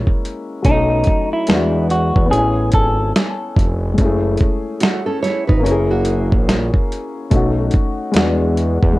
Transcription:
0.00 0.59 G#3 medium
0.00 0.61 A#3 medium
0.00 0.63 C#4 medium
0.00 0.65 E4 medium
0.07 kick medium
0.25 closed hi-hat medium
0.62 1.04 B1 loud
0.62 1.47 F#3 medium
0.62 1.48 A3 medium
0.62 1.49 C#4 medium
0.62 1.29 D#4 medium
0.62 kick medium
0.62 closed hi-hat medium
0.68 1.50 D#4 medium
1.04 kick medium
1.04 closed hi-hat medium
1.33 1.87 E4 medium
1.47 2.12 E2 medium
1.47 2.32 G#3 medium
1.47 2.24 B3 medium
1.47 finger snap medium
1.47 snare loud
1.47 closed hi-hat medium
1.52 2.34 D4 medium
1.52 2.35 F#4 medium
1.90 2.28 F#4 medium
1.90 closed hi-hat medium
2.16 2.31 E2 medium
2.16 kick loud
2.26 3.92 B3 medium
2.26 3.94 C#4 medium
2.31 2.71 A1 loud
2.31 3.96 E4 medium
2.31 2.69 G#4 medium
2.31 closed hi-hat medium
2.38 3.98 G#5 medium
2.72 3.13 G#1 loud
2.72 3.12 A4 medium
2.72 kick loud
2.72 closed hi-hat medium
3.16 finger snap medium
3.16 snare loud
3.16 closed hi-hat medium
3.56 3.96 F1 medium
3.56 kick medium
3.56 closed hi-hat medium
3.94 4.04 G#3 medium
3.94 5.61 C#4 medium
3.98 4.38 F#1 loud
3.98 5.63 A3 medium
3.98 5.63 E4 medium
3.98 kick medium
3.98 closed hi-hat medium
4.05 5.65 G#4 medium
4.37 kick medium
4.37 closed hi-hat medium
4.80 5.06 A3 medium
4.80 5.06 F#4 medium
4.80 finger snap loud
4.80 snare loud
4.80 closed hi-hat medium
5.06 5.22 C#4 medium
5.06 5.22 A4 medium
5.22 5.47 E4 medium
5.22 5.47 C#5 medium
5.22 snare soft
5.22 closed hi-hat medium
5.47 5.64 G#1 medium
5.47 5.64 D#4 medium
5.47 5.63 B4 medium
5.47 kick medium
5.59 7.25 A#3 medium
5.59 7.27 C#4 medium
5.65 6.34 F#1 loud
5.65 5.89 C#4 medium
5.65 7.30 E4 medium
5.65 5.89 A#4 medium
5.65 closed hi-hat medium
5.71 7.32 G#4 medium
5.91 7.12 A#3 medium
5.91 7.12 F#4 medium
6.05 closed hi-hat medium
6.32 6.72 A#1 loud
6.32 kick loud
6.49 finger snap medium
6.49 snare loud
6.49 closed hi-hat medium
6.74 kick medium
6.92 closed hi-hat medium
7.30 7.71 B1 loud
7.30 8.14 A3 medium
7.30 8.15 C#4 medium
7.30 kick medium
7.30 closed hi-hat medium
7.35 8.16 D#4 medium
7.35 8.16 F#4 medium
7.71 kick medium
7.71 closed hi-hat medium
8.12 8.79 E2 loud
8.12 8.91 G#3 medium
8.12 8.95 B3 medium
8.12 8.99 D4 medium
8.12 closed hi-hat medium
8.17 8.99 F#4 medium
8.17 finger snap loud
8.17 snare loud
8.57 closed hi-hat medium
8.83 8.98 E2 loud
8.83 kick medium
8.93 8.99 G#3 medium

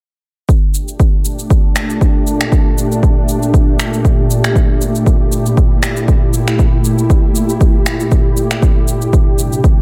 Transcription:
0.49 8.59 A#2 medium
0.49 8.58 A3 medium
0.49 4.52 D4 medium
0.49 9.82 G4 medium
0.49 kick loud
0.49 cabasa soft
0.74 cabasa medium
0.88 cabasa soft
1.00 kick loud
1.00 cabasa soft
1.25 cabasa medium
1.39 cabasa medium
1.50 kick loud
1.50 cabasa soft
1.76 finger snap loud
1.76 cabasa medium
1.90 cabasa soft
2.01 kick loud
2.01 cabasa soft
2.27 cabasa medium
2.41 finger snap loud
2.41 cabasa medium
2.52 kick loud
2.52 cabasa soft
2.78 cabasa medium
2.92 cabasa medium
3.03 kick loud
3.03 cabasa soft
3.29 cabasa medium
3.43 cabasa medium
3.54 kick loud
3.54 cabasa soft
3.79 finger snap medium
3.79 cabasa loud
3.93 cabasa soft
4.05 kick loud
4.05 cabasa soft
4.30 cabasa medium
4.44 finger snap medium
4.44 cabasa medium
4.56 8.59 E4 medium
4.56 kick loud
4.56 cabasa soft
4.81 cabasa medium
4.95 cabasa medium
5.06 kick loud
5.06 cabasa soft
5.32 cabasa medium
5.46 cabasa medium
5.57 kick loud
5.57 cabasa soft
5.83 finger snap loud
5.83 cabasa loud
5.97 cabasa medium
6.08 kick loud
6.08 cabasa soft
6.33 cabasa medium
6.48 finger snap medium
6.48 cabasa medium
6.59 kick loud
6.59 cabasa soft
6.84 cabasa medium
6.98 cabasa medium
7.10 kick loud
7.10 cabasa soft
7.35 cabasa loud
7.49 cabasa medium
7.61 kick loud
7.61 cabasa soft
7.86 finger snap medium
7.86 cabasa loud
8.00 cabasa soft
8.11 kick loud
8.11 cabasa soft
8.37 cabasa medium
8.51 finger snap medium
8.51 cabasa medium
8.62 9.82 G2 medium
8.62 9.82 C3 medium
8.62 9.82 G3 medium
8.62 9.82 D4 medium
8.62 kick loud
8.62 cabasa soft
8.88 cabasa medium
9.02 cabasa medium
9.13 kick loud
9.13 cabasa soft
9.39 cabasa medium
9.53 cabasa soft
9.64 kick loud
9.64 cabasa soft

